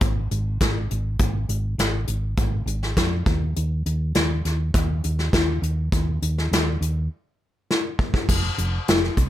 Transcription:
0.01 fingered electric bass G#1, kick, closed hi-hat
0.31 fingered electric bass G#1, closed hi-hat
0.61 fingered electric bass G#1, kick, snare, closed hi-hat
0.91 fingered electric bass G#1, closed hi-hat
1.19 fingered electric bass G#1, kick, closed hi-hat
1.49 fingered electric bass G#1, closed hi-hat
1.78 fingered electric bass G#1, snare, closed hi-hat
2.07 fingered electric bass G#1, closed hi-hat
2.37 fingered electric bass G#1, kick, closed hi-hat
2.66 fingered electric bass G#1, closed hi-hat
2.83 snare
2.97 fingered electric bass F2, kick, snare, closed hi-hat
3.26 fingered electric bass D#2, kick, closed hi-hat
3.56 fingered electric bass D#2, closed hi-hat
3.86 fingered electric bass D#2, closed hi-hat
4.15 fingered electric bass D#2, snare, closed hi-hat
4.45 fingered electric bass D#2, snare, closed hi-hat
4.74 fingered electric bass D#2, kick, closed hi-hat
5.04 fingered electric bass D#2, closed hi-hat
5.19 snare
5.33 fingered electric bass D#2, kick, snare, closed hi-hat
5.62 fingered electric bass D#2, closed hi-hat
5.92 fingered electric bass D#2, kick, closed hi-hat
6.22 fingered electric bass D#2, closed hi-hat
6.38 snare
6.51 fingered electric bass D#2, snare, closed hi-hat
6.81 fingered electric bass D#2, closed hi-hat
7.71 snare
7.99 kick
8.14 kick
8.29 fingered electric bass F1, kick, crash
8.58 fingered electric bass F1, closed hi-hat
8.88 fingered electric bass F1, snare, closed hi-hat
9.04 snare
9.17 fingered electric bass C2, kick, closed hi-hat

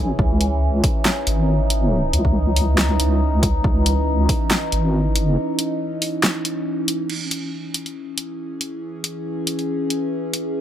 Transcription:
Already playing: wobble bass C#2, synth drone E3 C#4 G#4
0.19 wobble bass C#2, synth drone D#4, kick
0.41 closed hi-hat
0.84 kick, open hi-hat
1.05 snare, clap
1.27 wobble bass G#1, closed hi-hat
1.70 closed hi-hat
2.13 wobble bass C#2, closed hi-hat
2.25 kick
2.56 open hi-hat
2.78 snare, clap
3.00 wobble bass C#2, closed hi-hat
3.43 kick, closed hi-hat
3.64 wobble bass C#2, kick
3.86 closed hi-hat
4.29 kick, open hi-hat
4.51 snare, clap
4.72 wobble bass G#1, closed hi-hat
5.16 wobble bass G1, closed hi-hat
5.59 closed hi-hat
6.02 open hi-hat
6.23 snare, clap
6.45 closed hi-hat
6.88 closed hi-hat
7.09 synth drone E3 C#4 G#4, crash
7.31 closed hi-hat
7.74 closed hi-hat
7.86 closed hi-hat
8.18 closed hi-hat
8.61 closed hi-hat
9.04 closed hi-hat
9.47 closed hi-hat
9.59 closed hi-hat
9.90 closed hi-hat
10.34 closed hi-hat

